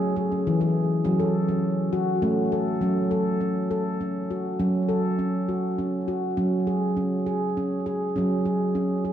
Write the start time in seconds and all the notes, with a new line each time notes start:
Already playing: F#3 C#4
0.16 G#4
0.32 C#4
0.47 E3
0.61 G#4
1.04 F#3 C#4
1.20 A4
1.48 C#4
1.93 F#4
2.22 A3 C#4
2.52 A4
2.81 F#3 C#4
3.11 A4
3.41 C#4
3.71 A4
4.01 C#4
4.30 F#4
4.59 F#3 C#4
4.89 A4
5.19 C#4
5.49 F#4
5.78 C#4
6.08 F#4
6.37 F#3 C#4
6.67 G#4
6.97 C#4
7.26 G#4
7.57 C#4
7.86 G#4
8.16 F#3 C#4
8.45 G#4
8.75 C#4
9.05 G#4